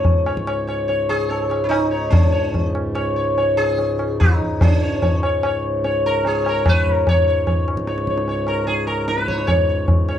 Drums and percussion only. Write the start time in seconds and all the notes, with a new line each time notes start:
0.05 tabla tin, tabla ge
0.26 tabla na
0.37 tabla ke
0.47 tabla na
0.69 tabla na
0.89 tabla tin
1.10 tabla na
1.31 tabla tin
1.51 tabla na
1.71 tabla na
2.13 tabla tin, tabla ge
2.54 tabla tin, tabla ge
2.75 tabla na
2.95 tabla na
3.38 tabla tin
3.79 tabla tin
3.99 tabla na
4.21 tabla na, tabla ge
4.42 tabla ge
4.61 tabla tin, tabla ge
5.02 tabla tin, tabla ge
5.23 tabla na
5.43 tabla na
5.85 tabla tin
6.25 tabla tin
6.46 tabla na
6.66 tabla na, tabla ge
6.87 tabla ge
7.07 tabla tin, tabla ge
7.47 tabla tin, tabla ge
7.68 tabla na
7.77 tabla ke
7.87 tabla te
7.98 tabla te
8.07 tabla ke
8.18 tabla te
8.28 tabla tin
8.47 tabla na
8.68 tabla tin
8.88 tabla na
9.08 tabla te
9.18 tabla te
9.28 tabla ke
9.38 tabla te
9.48 tabla tin, tabla ge
9.88 tabla tin, tabla ge
10.09 tabla na